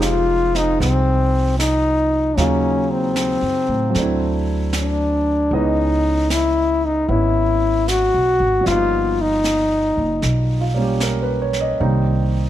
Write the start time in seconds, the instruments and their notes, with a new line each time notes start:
Already playing: upright bass F1, grand piano F3 G#3 C4 D#4 G4
0.02 trombone F4, snare, hi-hat pedal
0.54 grand piano C4 D#4 F4 G#4, trombone D#4, snare
0.80 upright bass C2, trombone C4, brush sweep, snare
1.59 trombone D#4, snare, hi-hat pedal
2.36 upright bass D#2, grand piano C#3 F#3 A#3 D#4 F4, trombone C#4, brush sweep, snare
2.92 trombone C4
3.16 snare, hi-hat pedal
3.42 upright bass F#2
3.68 upright bass A2
3.90 grand piano F#3 A3
3.95 upright bass D2, grand piano C4, brush sweep, snare
3.99 grand piano D4 E4
4.73 snare, hi-hat pedal
4.79 trombone D4
5.51 upright bass C#2, grand piano E3 G#3 B3 C#4 D#5, trombone D#4, brush sweep
6.30 trombone E4, snare, hi-hat pedal
6.85 trombone D#4
7.09 upright bass G#1, grand piano B3 C#4 E4, trombone E4, brush sweep
7.88 trombone F#4, snare, hi-hat pedal
8.14 upright bass B1
8.40 upright bass G#1
8.61 grand piano F3 G3
8.66 upright bass G1, grand piano A#3 B3, trombone F4, brush sweep, snare
8.72 grand piano D#4
9.21 trombone D#4
9.44 snare, hi-hat pedal
9.97 upright bass F#1
10.22 upright bass B1, brush sweep, snare
10.61 grand piano F4
10.74 grand piano G3 A#3 C#4
10.82 grand piano G4
11.00 grand piano A#4, snare, hi-hat pedal
11.22 grand piano B4
11.42 grand piano C#5
11.53 snare
11.60 grand piano D#5
11.79 upright bass C2, grand piano D#3 G3 A#3 C4 D#4, brush sweep